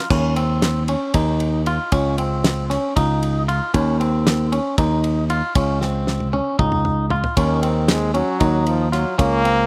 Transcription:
0.10 D#2 C#4, kick, crash
0.36 C4, ride
0.62 snare, ride
0.88 C#4, ride
1.14 D#2 D#4, kick, ride
1.40 ride
1.66 F4, ride
1.92 C#2 C#4, kick, ride
2.18 C4, ride
2.44 snare, ride
2.70 C#4, snare, ride
2.96 C#2 D#4, kick, ride
3.23 ride
3.48 F4, ride
3.74 D#2 C#4, kick, ride
4.00 C4, ride
4.27 snare, ride
4.52 C#4, ride
4.78 D#2 D#4, kick, ride
5.04 ride
5.30 F4, ride
5.55 C#2 C#4, kick, ride
5.81 C4, snare
6.07 snare
6.20 high tom
6.33 C#4, high tom
6.59 C#2 D#4, kick, mid tom
6.72 mid tom
6.85 mid tom
7.10 F4, floor tom
7.24 floor tom
7.37 D#2 D#3 C#4, kick, ride
7.63 C4, ride
7.88 G#3, snare, ride
8.14 F#3 C#4, ride
8.40 D#2 D#4, kick, ride
8.66 F3, ride
8.92 F#3 F4, snare, ride
9.18 C#2 A#3 C#4, kick, ride
9.45 C4, ride

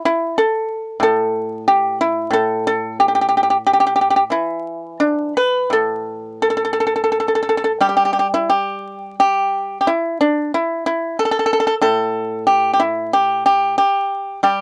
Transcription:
0.05 E4
0.38 A4
1.00 A2 A4
1.68 G4
2.01 E4
2.30 A2 A4
2.67 A4
3.00 G4
3.08 G4
3.15 G4
3.21 G4
3.29 G4
3.37 G4
3.43 G4
3.50 G4
3.67 G4
3.73 G4
3.80 G4
3.87 G4
3.96 G4
4.01 G4
4.10 G4
4.16 G4
4.30 E3 E4
5.00 D4
5.37 B4
5.70 A2 A4
6.42 A4
6.50 A4
6.57 A4
6.65 A4
6.73 A4
6.80 A4
6.87 A4
6.96 A4
7.04 A4
7.12 A4
7.20 A4
7.28 A4
7.35 A4
7.43 A4
7.49 A4
7.57 A4
7.64 A4
7.80 G3 G4
7.89 G4
7.97 G4
8.05 G4
8.13 G4
8.19 G4
8.34 E4
8.50 G4
9.20 G4
9.81 G4
9.87 E4
10.21 D4
10.54 E4
10.86 E4
11.19 A4
11.25 A4
11.31 A4
11.39 A4
11.46 A4
11.53 A4
11.60 A4
11.67 A4
11.81 A2 A4
12.47 G4
12.74 G4
12.80 E4
13.13 G4
13.46 G4
13.78 G4
14.43 G3 G4

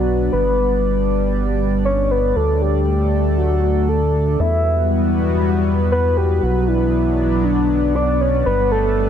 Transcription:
Already playing: B1 F#3 B3 D4 F#4 B4 D5
0.33 G1 G3 B4
1.85 C#5
2.11 B4
2.36 D2 A3 A4
2.62 G4
3.38 F#4
3.89 A4
4.39 E2 G3 B3 E4 F#4 B4 E5
5.92 B4
6.17 G4
6.43 B1 F#3 B3 D4 F#4 D5
6.68 E4
7.44 D4
7.95 D5
8.21 C#5
8.46 G1 G3 D4 B4
8.72 A4

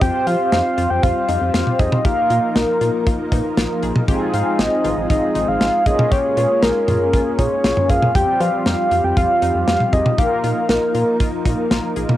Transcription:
0.01 F2 G3 C4 F4 G4 C5 G5, kick, closed hi-hat
0.27 F3 F4 F5, closed hi-hat
0.52 F2 D#4 F5, snare, closed hi-hat
0.78 F2 F4, closed hi-hat
0.90 F2 G5
1.03 F2 F4 F5, kick, closed hi-hat
1.28 F2 D#4, closed hi-hat
1.41 F2
1.54 F2 F4 F5, snare, closed hi-hat
1.67 mid tom
1.79 F2 G#4 D#5, kick, closed hi-hat
1.92 mid tom
2.05 A#1 F3 A#3 D#4 F4 G4 A#4 F5, kick, closed hi-hat
2.30 A#2 F4, closed hi-hat
2.56 A#1 D#4 A#4, snare, closed hi-hat
2.81 A#2 F4, closed hi-hat
3.07 A#1 F4, kick, closed hi-hat
3.32 A#2 D#4, kick, closed hi-hat, cowbell
3.57 A#1 F4, snare, closed hi-hat
3.83 A#1 G#4, closed hi-hat
3.96 mid tom
4.08 G#1 G#3 C4 D#4 F4 G4 G#4, kick, closed hi-hat
4.34 G#2 F4 F5, closed hi-hat
4.59 G#1 D#4 D#5, snare, closed hi-hat
4.84 G#1 F4, closed hi-hat, cowbell
4.97 G#1
5.10 G#1 F4 D#5, kick, closed hi-hat
5.35 G#1 D#4, closed hi-hat
5.48 G#1 F5
5.61 G#1 F4, snare, closed hi-hat
5.86 A#1 A#3 C#4 F4 G#4 D#5, kick, closed hi-hat
5.99 mid tom
6.12 A#1 G4 C#5, kick, closed hi-hat
6.37 A#2 F4, closed hi-hat, cowbell
6.63 A#1 D#4 A#4, snare, closed hi-hat
6.88 A#2 F4, closed hi-hat, mid tom
7.13 A#1 F4, kick, closed hi-hat
7.39 A#2 D#4 C#5, kick, closed hi-hat
7.64 A#1 F4, snare, closed hi-hat
7.77 mid tom
7.89 A#1 G#4 F5, kick, closed hi-hat, cowbell
8.02 mid tom
8.15 F2 F3 G3 C4 F4 G4 G5, kick, closed hi-hat
8.40 F3 F4 F5, closed hi-hat, cowbell
8.66 F2 D#4 F5, snare, closed hi-hat
8.91 F2 F4, closed hi-hat
9.04 F2 G5
9.17 F2 F4 F5, kick, closed hi-hat
9.42 F2 D#4, closed hi-hat
9.55 F2
9.67 F2 F4 F5, snare, closed hi-hat
9.80 mid tom
9.93 F2 G#4 D#5, kick, closed hi-hat
10.06 mid tom
10.18 A#1 F3 A#3 D#4 F4 G4 A#4 F5, kick, closed hi-hat
10.44 A#2 F4, closed hi-hat
10.69 A#1 D#4 A#4, snare, closed hi-hat
10.95 A#2 F4, closed hi-hat
11.20 A#1 F4, kick, closed hi-hat
11.45 A#2 D#4, kick, closed hi-hat
11.71 A#1 F4, snare, closed hi-hat
11.96 A#1 G#4, closed hi-hat
12.09 mid tom

